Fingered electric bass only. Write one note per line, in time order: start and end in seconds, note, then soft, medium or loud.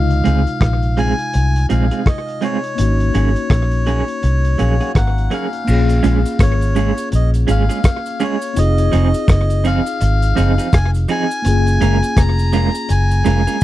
0.00 0.21 C#2 loud
0.26 0.45 C#2 medium
0.61 1.12 A#1 medium
1.35 1.66 C2 medium
1.71 1.89 A#1 medium
2.79 3.10 G#1 medium
3.15 3.34 G#1 loud
3.51 4.01 A#1 medium
4.24 4.55 C2 medium
4.60 4.79 A#1 medium
4.96 5.27 G#1 medium
5.68 5.99 A#1 loud
6.04 6.23 A#1 loud
6.40 6.90 G#1 medium
7.13 7.44 A#1 medium
7.49 7.67 G#1 medium
8.57 8.88 F1 loud
8.94 9.12 F1 medium
9.29 9.79 F#1 medium
10.02 10.33 G#1 loud
10.38 10.56 F#1 medium
10.74 11.05 F1 medium
11.46 11.77 F#1 loud
11.82 12.01 F#1 loud
12.18 12.68 F1 medium
12.90 13.21 F#1 medium
13.26 13.45 F1 medium